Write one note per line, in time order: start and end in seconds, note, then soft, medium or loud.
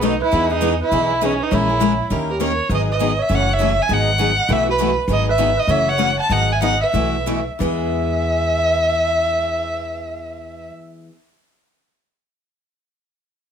0.00 0.20 B1 medium
0.00 0.13 B2 medium
0.00 0.13 F#3 medium
0.00 0.13 A3 medium
0.00 0.13 D#4 medium
0.00 0.13 F#4 medium
0.00 0.14 B4 medium
0.05 0.21 D#4 medium
0.05 0.20 B4 medium
0.22 0.50 E4 loud
0.22 0.49 B4 medium
0.32 0.80 E2 medium
0.32 0.49 E3 medium
0.32 0.52 G#3 medium
0.32 0.50 B3 medium
0.32 0.49 D#4 medium
0.32 0.48 G#4 medium
0.50 0.61 B3 soft
0.50 0.60 D#4 soft
0.50 0.61 G#4 medium
0.50 0.78 B4 medium
0.54 0.80 D#4 medium
0.61 0.72 E3 medium
0.61 0.73 G#3 medium
0.61 0.73 B3 medium
0.61 0.73 D#4 loud
0.61 0.73 G#4 loud
0.81 1.26 E4 loud
0.81 1.20 B4 medium
0.91 1.39 B1 medium
0.91 1.11 E3 medium
0.91 1.11 G#3 medium
0.91 1.12 B3 medium
0.91 1.12 D#4 medium
0.91 1.12 G#4 medium
1.21 1.32 E3 medium
1.21 1.32 G#3 medium
1.21 1.32 B3 medium
1.21 1.44 C#4 medium
1.21 1.32 D#4 medium
1.21 1.40 G#4 medium
1.21 1.33 G#4 medium
1.40 1.55 D#4 medium
1.40 1.52 B4 medium
1.51 1.99 A#1 medium
1.51 1.68 E3 medium
1.51 1.68 G#3 medium
1.51 1.69 C#4 medium
1.51 2.12 E4 medium
1.51 1.68 G#4 medium
1.51 1.68 A#4 medium
1.51 2.41 C#5 medium
1.69 1.79 C#4 soft
1.69 1.80 G#4 soft
1.69 1.79 A#4 medium
1.80 1.91 E3 medium
1.80 1.92 G#3 medium
1.80 1.92 C#4 medium
1.80 1.92 G#4 medium
1.80 1.92 A#4 medium
2.10 2.58 D#2 medium
2.10 2.30 D#3 medium
2.10 2.31 A#3 medium
2.10 2.31 C#4 medium
2.10 2.31 G4 medium
2.10 2.31 A#4 medium
2.30 2.41 G4 medium
2.30 2.41 A#4 medium
2.40 2.51 D#3 medium
2.40 2.51 A#3 medium
2.40 2.51 C#4 medium
2.40 2.51 G4 medium
2.40 2.52 A#4 medium
2.40 2.69 A#4 medium
2.40 2.70 C#5 medium
2.69 3.17 G#1 medium
2.69 2.90 D#3 medium
2.69 2.90 F#3 medium
2.69 2.90 B3 medium
2.69 2.90 D#4 medium
2.69 2.90 G#4 medium
2.69 2.79 B4 medium
2.74 2.81 D#5 medium
2.89 3.17 B4 medium
2.89 3.23 D#5 medium
3.00 3.11 D#3 medium
3.00 3.11 F#3 medium
3.00 3.11 B3 medium
3.00 3.11 D#4 medium
3.00 3.12 G#4 medium
3.19 3.31 C#5 medium
3.19 3.36 E5 medium
3.29 3.77 F#1 medium
3.29 3.50 C#3 medium
3.29 3.50 E3 medium
3.29 3.49 F#3 medium
3.29 3.50 A3 medium
3.29 3.51 C#4 medium
3.29 3.49 E4 medium
3.29 3.49 A4 medium
3.29 3.48 C#5 medium
3.33 3.51 F#4 medium
3.33 3.54 F#5 medium
3.49 3.78 C#5 medium
3.49 3.83 E5 medium
3.59 3.71 C#3 medium
3.59 3.71 E3 medium
3.59 3.70 F#3 medium
3.59 3.71 A3 medium
3.59 3.71 C#4 medium
3.59 3.71 E4 medium
3.59 3.71 F#4 medium
3.59 3.71 A4 medium
3.80 3.91 E5 medium
3.80 3.94 G#5 medium
3.89 4.37 G#1 medium
3.89 4.09 D#3 medium
3.89 4.09 F#3 medium
3.89 4.09 B3 medium
3.89 4.10 D#4 medium
3.89 4.10 G#4 medium
3.89 4.50 D#5 medium
3.89 4.54 F#5 medium
4.20 4.30 D#3 medium
4.20 4.30 F#3 medium
4.20 4.31 B3 medium
4.20 4.31 D#4 medium
4.20 4.31 G#4 loud
4.49 4.96 B1 medium
4.49 4.68 B2 medium
4.49 4.69 E3 medium
4.49 4.69 A3 medium
4.49 4.69 E4 medium
4.49 4.69 F#4 medium
4.49 4.69 B4 medium
4.49 4.67 B4 medium
4.49 4.68 E5 medium
4.69 4.96 F#4 medium
4.69 4.96 B4 medium
4.80 4.90 B2 medium
4.80 4.90 E3 medium
4.80 4.91 A3 medium
4.80 4.90 E4 medium
4.80 4.91 F#4 medium
4.80 4.90 B4 medium
5.08 5.56 G#1 medium
5.08 5.28 D#3 medium
5.08 5.29 F#3 medium
5.08 5.29 B3 medium
5.08 5.29 D#4 medium
5.08 5.29 G#4 medium
5.08 5.26 B4 medium
5.13 5.27 D#5 medium
5.29 5.55 B4 medium
5.29 5.61 E5 medium
5.39 5.49 D#3 medium
5.39 5.50 F#3 medium
5.39 5.50 B3 medium
5.39 5.50 D#4 medium
5.39 5.50 G#4 medium
5.57 5.69 B4 medium
5.57 5.72 D#5 medium
5.67 6.17 F#1 medium
5.67 5.88 C#3 medium
5.67 5.88 E3 medium
5.67 5.88 F#3 medium
5.67 5.89 A3 medium
5.67 5.89 C#4 medium
5.67 5.89 E4 medium
5.67 5.89 F#4 medium
5.67 5.89 A4 medium
5.67 5.87 C#5 medium
5.67 5.90 E5 medium
5.88 6.18 C#5 medium
5.88 6.18 F#5 medium
5.98 6.09 C#3 medium
5.98 6.09 E3 medium
5.98 6.10 F#3 medium
5.98 6.10 A3 medium
5.98 6.10 C#4 medium
5.98 6.10 E4 medium
5.98 6.10 F#4 medium
5.98 6.10 A4 medium
6.20 6.30 F#5 medium
6.20 6.34 A5 medium
6.29 6.81 G#1 medium
6.29 6.50 D#3 medium
6.29 6.50 F#3 medium
6.29 6.50 B3 medium
6.29 6.50 D#4 medium
6.29 6.51 G#4 medium
6.29 6.51 D#5 medium
6.29 6.54 F#5 medium
6.52 6.63 E5 medium
6.52 6.62 G#5 medium
6.61 6.72 D#3 medium
6.61 6.73 F#3 medium
6.61 6.73 B3 medium
6.61 6.73 D#4 loud
6.61 6.73 G#4 medium
6.61 6.80 D#5 medium
6.61 6.80 F#5 medium
6.81 7.45 B4 medium
6.81 7.43 E5 medium
6.92 7.48 B1 medium
6.92 7.15 B2 medium
6.92 7.15 E3 medium
6.92 7.15 A3 medium
6.92 7.15 E4 medium
6.92 7.15 F#4 medium
6.92 7.16 B4 medium
7.26 7.39 B2 medium
7.26 7.39 E3 medium
7.26 7.39 A3 medium
7.26 7.39 E4 medium
7.26 7.39 F#4 medium
7.26 7.39 B4 medium
7.59 10.68 E2 medium
7.59 11.09 E3 medium
7.59 11.11 G#3 medium
7.59 11.10 B3 medium
7.59 11.12 G#4 medium
7.59 10.69 B4 medium
7.59 10.69 E5 medium